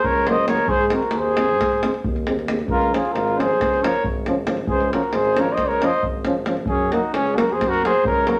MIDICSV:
0, 0, Header, 1, 7, 480
1, 0, Start_track
1, 0, Key_signature, -5, "major"
1, 0, Tempo, 443131
1, 753, Time_signature, 9, 3, 24, 8
1, 9093, End_track
2, 0, Start_track
2, 0, Title_t, "Flugelhorn"
2, 0, Program_c, 0, 56
2, 61, Note_on_c, 0, 73, 80
2, 327, Note_on_c, 0, 75, 88
2, 344, Note_off_c, 0, 73, 0
2, 510, Note_off_c, 0, 75, 0
2, 516, Note_on_c, 0, 73, 89
2, 749, Note_on_c, 0, 72, 90
2, 765, Note_off_c, 0, 73, 0
2, 938, Note_off_c, 0, 72, 0
2, 938, Note_on_c, 0, 72, 45
2, 1018, Note_on_c, 0, 70, 73
2, 1034, Note_off_c, 0, 72, 0
2, 1273, Note_on_c, 0, 72, 76
2, 1289, Note_off_c, 0, 70, 0
2, 2235, Note_off_c, 0, 72, 0
2, 2929, Note_on_c, 0, 70, 87
2, 3189, Note_on_c, 0, 68, 68
2, 3205, Note_off_c, 0, 70, 0
2, 3379, Note_on_c, 0, 70, 79
2, 3396, Note_off_c, 0, 68, 0
2, 3650, Note_on_c, 0, 72, 78
2, 3666, Note_off_c, 0, 70, 0
2, 4163, Note_on_c, 0, 73, 91
2, 4179, Note_off_c, 0, 72, 0
2, 4385, Note_off_c, 0, 73, 0
2, 5091, Note_on_c, 0, 72, 82
2, 5326, Note_off_c, 0, 72, 0
2, 5341, Note_on_c, 0, 70, 72
2, 5571, Note_on_c, 0, 72, 81
2, 5587, Note_off_c, 0, 70, 0
2, 5847, Note_on_c, 0, 73, 84
2, 5863, Note_off_c, 0, 72, 0
2, 5989, Note_on_c, 0, 75, 79
2, 6005, Note_off_c, 0, 73, 0
2, 6141, Note_on_c, 0, 73, 80
2, 6157, Note_off_c, 0, 75, 0
2, 6326, Note_on_c, 0, 75, 87
2, 6342, Note_off_c, 0, 73, 0
2, 6548, Note_off_c, 0, 75, 0
2, 7237, Note_on_c, 0, 68, 85
2, 7497, Note_on_c, 0, 66, 74
2, 7514, Note_off_c, 0, 68, 0
2, 7725, Note_off_c, 0, 66, 0
2, 7739, Note_on_c, 0, 68, 68
2, 7997, Note_on_c, 0, 70, 75
2, 8013, Note_off_c, 0, 68, 0
2, 8162, Note_on_c, 0, 72, 80
2, 8178, Note_off_c, 0, 70, 0
2, 8331, Note_on_c, 0, 70, 93
2, 8347, Note_off_c, 0, 72, 0
2, 8490, Note_off_c, 0, 70, 0
2, 8511, Note_on_c, 0, 72, 96
2, 8707, Note_off_c, 0, 72, 0
2, 8740, Note_on_c, 0, 73, 82
2, 8984, Note_on_c, 0, 70, 92
2, 9000, Note_off_c, 0, 73, 0
2, 9093, Note_off_c, 0, 70, 0
2, 9093, End_track
3, 0, Start_track
3, 0, Title_t, "Trumpet"
3, 0, Program_c, 1, 56
3, 30, Note_on_c, 1, 70, 80
3, 299, Note_on_c, 1, 72, 72
3, 315, Note_off_c, 1, 70, 0
3, 509, Note_off_c, 1, 72, 0
3, 516, Note_on_c, 1, 70, 75
3, 740, Note_on_c, 1, 68, 82
3, 756, Note_off_c, 1, 70, 0
3, 954, Note_off_c, 1, 68, 0
3, 954, Note_on_c, 1, 68, 60
3, 992, Note_on_c, 1, 66, 63
3, 1008, Note_off_c, 1, 68, 0
3, 1238, Note_on_c, 1, 68, 79
3, 1254, Note_off_c, 1, 66, 0
3, 2218, Note_off_c, 1, 68, 0
3, 2943, Note_on_c, 1, 65, 74
3, 3180, Note_off_c, 1, 65, 0
3, 3180, Note_on_c, 1, 65, 61
3, 3405, Note_off_c, 1, 65, 0
3, 3405, Note_on_c, 1, 65, 69
3, 3683, Note_on_c, 1, 68, 73
3, 3699, Note_off_c, 1, 65, 0
3, 4154, Note_on_c, 1, 70, 66
3, 4170, Note_off_c, 1, 68, 0
3, 4381, Note_off_c, 1, 70, 0
3, 5074, Note_on_c, 1, 68, 68
3, 5316, Note_off_c, 1, 68, 0
3, 5326, Note_on_c, 1, 66, 59
3, 5575, Note_on_c, 1, 68, 69
3, 5591, Note_off_c, 1, 66, 0
3, 5842, Note_on_c, 1, 70, 77
3, 5858, Note_off_c, 1, 68, 0
3, 5981, Note_on_c, 1, 72, 68
3, 5998, Note_off_c, 1, 70, 0
3, 6157, Note_on_c, 1, 70, 85
3, 6173, Note_off_c, 1, 72, 0
3, 6340, Note_on_c, 1, 72, 77
3, 6356, Note_off_c, 1, 70, 0
3, 6555, Note_off_c, 1, 72, 0
3, 7252, Note_on_c, 1, 61, 74
3, 7504, Note_on_c, 1, 63, 66
3, 7521, Note_off_c, 1, 61, 0
3, 7726, Note_off_c, 1, 63, 0
3, 7732, Note_on_c, 1, 61, 83
3, 7971, Note_on_c, 1, 66, 75
3, 7988, Note_off_c, 1, 61, 0
3, 8150, Note_on_c, 1, 68, 73
3, 8166, Note_off_c, 1, 66, 0
3, 8315, Note_on_c, 1, 66, 94
3, 8331, Note_off_c, 1, 68, 0
3, 8483, Note_off_c, 1, 66, 0
3, 8506, Note_on_c, 1, 68, 80
3, 8704, Note_off_c, 1, 68, 0
3, 8734, Note_on_c, 1, 70, 78
3, 8979, Note_on_c, 1, 66, 74
3, 8996, Note_off_c, 1, 70, 0
3, 9093, Note_off_c, 1, 66, 0
3, 9093, End_track
4, 0, Start_track
4, 0, Title_t, "Euphonium"
4, 0, Program_c, 2, 58
4, 286, Note_on_c, 2, 58, 66
4, 380, Note_off_c, 2, 58, 0
4, 501, Note_on_c, 2, 58, 57
4, 596, Note_off_c, 2, 58, 0
4, 1000, Note_on_c, 2, 60, 60
4, 1094, Note_off_c, 2, 60, 0
4, 1489, Note_on_c, 2, 60, 61
4, 1583, Note_off_c, 2, 60, 0
4, 1982, Note_on_c, 2, 60, 50
4, 2075, Note_off_c, 2, 60, 0
4, 2461, Note_on_c, 2, 60, 54
4, 2551, Note_off_c, 2, 60, 0
4, 2693, Note_on_c, 2, 60, 42
4, 2781, Note_off_c, 2, 60, 0
4, 3167, Note_on_c, 2, 61, 58
4, 3259, Note_off_c, 2, 61, 0
4, 3649, Note_on_c, 2, 61, 60
4, 3743, Note_off_c, 2, 61, 0
4, 4136, Note_on_c, 2, 61, 54
4, 4230, Note_off_c, 2, 61, 0
4, 4638, Note_on_c, 2, 61, 65
4, 4725, Note_off_c, 2, 61, 0
4, 4840, Note_on_c, 2, 61, 52
4, 4931, Note_off_c, 2, 61, 0
4, 5345, Note_on_c, 2, 61, 62
4, 5434, Note_off_c, 2, 61, 0
4, 5812, Note_on_c, 2, 61, 72
4, 5906, Note_off_c, 2, 61, 0
4, 6295, Note_on_c, 2, 61, 65
4, 6390, Note_off_c, 2, 61, 0
4, 6771, Note_on_c, 2, 61, 69
4, 6863, Note_off_c, 2, 61, 0
4, 7003, Note_on_c, 2, 61, 53
4, 7094, Note_off_c, 2, 61, 0
4, 7483, Note_on_c, 2, 58, 65
4, 7577, Note_off_c, 2, 58, 0
4, 7971, Note_on_c, 2, 58, 67
4, 8065, Note_off_c, 2, 58, 0
4, 8462, Note_on_c, 2, 58, 60
4, 8556, Note_off_c, 2, 58, 0
4, 8945, Note_on_c, 2, 58, 65
4, 9035, Note_off_c, 2, 58, 0
4, 9093, End_track
5, 0, Start_track
5, 0, Title_t, "Trombone"
5, 0, Program_c, 3, 57
5, 294, Note_on_c, 3, 54, 56
5, 386, Note_off_c, 3, 54, 0
5, 499, Note_on_c, 3, 54, 54
5, 594, Note_off_c, 3, 54, 0
5, 992, Note_on_c, 3, 56, 59
5, 1087, Note_off_c, 3, 56, 0
5, 1499, Note_on_c, 3, 56, 43
5, 1591, Note_off_c, 3, 56, 0
5, 1996, Note_on_c, 3, 56, 57
5, 2086, Note_off_c, 3, 56, 0
5, 2449, Note_on_c, 3, 56, 51
5, 2542, Note_off_c, 3, 56, 0
5, 2681, Note_on_c, 3, 56, 44
5, 2771, Note_off_c, 3, 56, 0
5, 3154, Note_on_c, 3, 53, 51
5, 3249, Note_off_c, 3, 53, 0
5, 3670, Note_on_c, 3, 53, 48
5, 3759, Note_off_c, 3, 53, 0
5, 4150, Note_on_c, 3, 53, 64
5, 4241, Note_off_c, 3, 53, 0
5, 4615, Note_on_c, 3, 53, 63
5, 4707, Note_off_c, 3, 53, 0
5, 4845, Note_on_c, 3, 53, 55
5, 4935, Note_off_c, 3, 53, 0
5, 5334, Note_on_c, 3, 53, 64
5, 5425, Note_off_c, 3, 53, 0
5, 5831, Note_on_c, 3, 53, 61
5, 5921, Note_off_c, 3, 53, 0
5, 6307, Note_on_c, 3, 53, 75
5, 6399, Note_off_c, 3, 53, 0
5, 6781, Note_on_c, 3, 53, 61
5, 6872, Note_off_c, 3, 53, 0
5, 6999, Note_on_c, 3, 53, 55
5, 7091, Note_off_c, 3, 53, 0
5, 7500, Note_on_c, 3, 54, 66
5, 7590, Note_off_c, 3, 54, 0
5, 8003, Note_on_c, 3, 54, 55
5, 8091, Note_off_c, 3, 54, 0
5, 8486, Note_on_c, 3, 54, 65
5, 8575, Note_off_c, 3, 54, 0
5, 8942, Note_on_c, 3, 54, 62
5, 9033, Note_off_c, 3, 54, 0
5, 9093, End_track
6, 0, Start_track
6, 0, Title_t, "Tuba"
6, 0, Program_c, 4, 58
6, 34, Note_on_c, 4, 37, 83
6, 759, Note_on_c, 4, 44, 91
6, 775, Note_off_c, 4, 37, 0
6, 1026, Note_off_c, 4, 44, 0
6, 1221, Note_on_c, 4, 39, 74
6, 1706, Note_on_c, 4, 44, 63
6, 1723, Note_off_c, 4, 39, 0
6, 1982, Note_off_c, 4, 44, 0
6, 2216, Note_on_c, 4, 39, 83
6, 2896, Note_on_c, 4, 37, 100
6, 2913, Note_off_c, 4, 39, 0
6, 3170, Note_off_c, 4, 37, 0
6, 3392, Note_on_c, 4, 32, 89
6, 3889, Note_on_c, 4, 37, 78
6, 3905, Note_off_c, 4, 32, 0
6, 4159, Note_off_c, 4, 37, 0
6, 4384, Note_on_c, 4, 32, 82
6, 5067, Note_on_c, 4, 37, 98
6, 5083, Note_off_c, 4, 32, 0
6, 5338, Note_off_c, 4, 37, 0
6, 5552, Note_on_c, 4, 32, 84
6, 6053, Note_on_c, 4, 37, 70
6, 6070, Note_off_c, 4, 32, 0
6, 6322, Note_off_c, 4, 37, 0
6, 6546, Note_on_c, 4, 32, 74
6, 7232, Note_on_c, 4, 42, 89
6, 7248, Note_off_c, 4, 32, 0
6, 7502, Note_off_c, 4, 42, 0
6, 7731, Note_on_c, 4, 37, 78
6, 8207, Note_on_c, 4, 42, 69
6, 8223, Note_off_c, 4, 37, 0
6, 8479, Note_off_c, 4, 42, 0
6, 8697, Note_on_c, 4, 37, 79
6, 9080, Note_off_c, 4, 37, 0
6, 9093, End_track
7, 0, Start_track
7, 0, Title_t, "Davul"
7, 45, Note_on_c, 9, 43, 74
7, 154, Note_off_c, 9, 43, 0
7, 289, Note_on_c, 9, 37, 62
7, 397, Note_off_c, 9, 37, 0
7, 517, Note_on_c, 9, 37, 74
7, 619, Note_off_c, 9, 37, 0
7, 619, Note_on_c, 9, 37, 32
7, 727, Note_off_c, 9, 37, 0
7, 736, Note_on_c, 9, 43, 82
7, 844, Note_off_c, 9, 43, 0
7, 877, Note_on_c, 9, 37, 25
7, 979, Note_off_c, 9, 37, 0
7, 979, Note_on_c, 9, 37, 64
7, 1087, Note_off_c, 9, 37, 0
7, 1109, Note_on_c, 9, 37, 22
7, 1201, Note_off_c, 9, 37, 0
7, 1201, Note_on_c, 9, 37, 63
7, 1310, Note_off_c, 9, 37, 0
7, 1481, Note_on_c, 9, 37, 69
7, 1589, Note_off_c, 9, 37, 0
7, 1611, Note_on_c, 9, 37, 25
7, 1719, Note_off_c, 9, 37, 0
7, 1740, Note_on_c, 9, 37, 61
7, 1740, Note_on_c, 9, 43, 59
7, 1849, Note_off_c, 9, 37, 0
7, 1849, Note_off_c, 9, 43, 0
7, 1861, Note_on_c, 9, 37, 22
7, 1969, Note_off_c, 9, 37, 0
7, 1981, Note_on_c, 9, 37, 69
7, 2089, Note_off_c, 9, 37, 0
7, 2102, Note_on_c, 9, 37, 24
7, 2210, Note_off_c, 9, 37, 0
7, 2214, Note_on_c, 9, 43, 87
7, 2322, Note_off_c, 9, 43, 0
7, 2339, Note_on_c, 9, 37, 24
7, 2447, Note_off_c, 9, 37, 0
7, 2456, Note_on_c, 9, 37, 55
7, 2565, Note_off_c, 9, 37, 0
7, 2587, Note_on_c, 9, 37, 25
7, 2690, Note_off_c, 9, 37, 0
7, 2690, Note_on_c, 9, 37, 68
7, 2799, Note_off_c, 9, 37, 0
7, 2804, Note_on_c, 9, 37, 26
7, 2904, Note_on_c, 9, 43, 85
7, 2913, Note_off_c, 9, 37, 0
7, 3013, Note_off_c, 9, 43, 0
7, 3048, Note_on_c, 9, 37, 23
7, 3156, Note_off_c, 9, 37, 0
7, 3189, Note_on_c, 9, 37, 65
7, 3297, Note_off_c, 9, 37, 0
7, 3304, Note_on_c, 9, 37, 27
7, 3412, Note_off_c, 9, 37, 0
7, 3418, Note_on_c, 9, 37, 57
7, 3526, Note_off_c, 9, 37, 0
7, 3547, Note_on_c, 9, 37, 21
7, 3656, Note_off_c, 9, 37, 0
7, 3685, Note_on_c, 9, 37, 60
7, 3793, Note_off_c, 9, 37, 0
7, 3799, Note_on_c, 9, 37, 22
7, 3908, Note_off_c, 9, 37, 0
7, 3911, Note_on_c, 9, 37, 63
7, 3911, Note_on_c, 9, 43, 61
7, 4019, Note_off_c, 9, 37, 0
7, 4019, Note_off_c, 9, 43, 0
7, 4047, Note_on_c, 9, 37, 27
7, 4156, Note_off_c, 9, 37, 0
7, 4164, Note_on_c, 9, 37, 75
7, 4272, Note_off_c, 9, 37, 0
7, 4286, Note_on_c, 9, 37, 22
7, 4379, Note_on_c, 9, 43, 83
7, 4394, Note_off_c, 9, 37, 0
7, 4488, Note_off_c, 9, 43, 0
7, 4616, Note_on_c, 9, 37, 58
7, 4725, Note_off_c, 9, 37, 0
7, 4840, Note_on_c, 9, 37, 76
7, 4948, Note_off_c, 9, 37, 0
7, 4949, Note_on_c, 9, 37, 28
7, 5057, Note_off_c, 9, 37, 0
7, 5063, Note_on_c, 9, 43, 82
7, 5171, Note_off_c, 9, 43, 0
7, 5204, Note_on_c, 9, 37, 25
7, 5313, Note_off_c, 9, 37, 0
7, 5341, Note_on_c, 9, 37, 59
7, 5448, Note_off_c, 9, 37, 0
7, 5448, Note_on_c, 9, 37, 23
7, 5553, Note_off_c, 9, 37, 0
7, 5553, Note_on_c, 9, 37, 63
7, 5661, Note_off_c, 9, 37, 0
7, 5684, Note_on_c, 9, 37, 23
7, 5793, Note_off_c, 9, 37, 0
7, 5812, Note_on_c, 9, 37, 64
7, 5920, Note_off_c, 9, 37, 0
7, 6039, Note_on_c, 9, 37, 52
7, 6039, Note_on_c, 9, 43, 51
7, 6147, Note_off_c, 9, 37, 0
7, 6147, Note_off_c, 9, 43, 0
7, 6185, Note_on_c, 9, 37, 24
7, 6293, Note_off_c, 9, 37, 0
7, 6301, Note_on_c, 9, 37, 64
7, 6409, Note_off_c, 9, 37, 0
7, 6421, Note_on_c, 9, 37, 22
7, 6530, Note_off_c, 9, 37, 0
7, 6531, Note_on_c, 9, 43, 68
7, 6639, Note_off_c, 9, 43, 0
7, 6765, Note_on_c, 9, 37, 60
7, 6873, Note_off_c, 9, 37, 0
7, 6997, Note_on_c, 9, 37, 64
7, 7105, Note_off_c, 9, 37, 0
7, 7115, Note_on_c, 9, 37, 25
7, 7211, Note_on_c, 9, 43, 79
7, 7223, Note_off_c, 9, 37, 0
7, 7320, Note_off_c, 9, 43, 0
7, 7494, Note_on_c, 9, 37, 55
7, 7603, Note_off_c, 9, 37, 0
7, 7618, Note_on_c, 9, 37, 20
7, 7726, Note_off_c, 9, 37, 0
7, 7734, Note_on_c, 9, 37, 65
7, 7842, Note_off_c, 9, 37, 0
7, 7873, Note_on_c, 9, 37, 23
7, 7981, Note_off_c, 9, 37, 0
7, 7995, Note_on_c, 9, 37, 71
7, 8104, Note_off_c, 9, 37, 0
7, 8118, Note_on_c, 9, 37, 24
7, 8226, Note_off_c, 9, 37, 0
7, 8245, Note_on_c, 9, 37, 64
7, 8245, Note_on_c, 9, 43, 52
7, 8353, Note_off_c, 9, 37, 0
7, 8353, Note_off_c, 9, 43, 0
7, 8379, Note_on_c, 9, 37, 28
7, 8487, Note_off_c, 9, 37, 0
7, 8504, Note_on_c, 9, 37, 68
7, 8613, Note_off_c, 9, 37, 0
7, 8622, Note_on_c, 9, 37, 25
7, 8720, Note_on_c, 9, 43, 85
7, 8731, Note_off_c, 9, 37, 0
7, 8828, Note_off_c, 9, 43, 0
7, 8957, Note_on_c, 9, 37, 60
7, 9065, Note_off_c, 9, 37, 0
7, 9093, End_track
0, 0, End_of_file